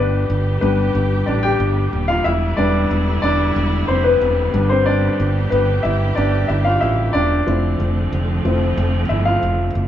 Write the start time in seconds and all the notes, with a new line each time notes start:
Already playing: G1 D3 G3 B3 D4 G4 B4 D5
0.30 G1
0.61 G1 G3 B3 D4 B4
0.95 G1
1.26 A1 D4 D5
1.43 G4 G5
1.60 G1
1.93 D#1
2.08 F4 F5
2.24 E1 E4 E5
2.57 E1 G3 B3 D4 D5
2.91 E1
3.22 E1 D4 D5
3.56 E1
3.88 F1 C4 C5
4.04 B3 B4
4.21 E1
4.54 G1 G3 B3 D4 G4
4.69 C4 C5
4.86 D4 D5
5.20 G1
5.50 G1 B3 B4
5.83 G1 E4 E5
6.15 G1 D4 D5
6.48 G1 E4 E5
6.64 F4 F5
6.81 A1 E4 E5
7.13 E1 D4 D5
7.47 F1 F3 A3 C4 E4
7.80 F1
8.13 F1
8.45 F1 F3 C4 E4
8.77 F1
9.09 G1 E4 E5
9.25 F4 F5
9.43 F1
9.75 F#1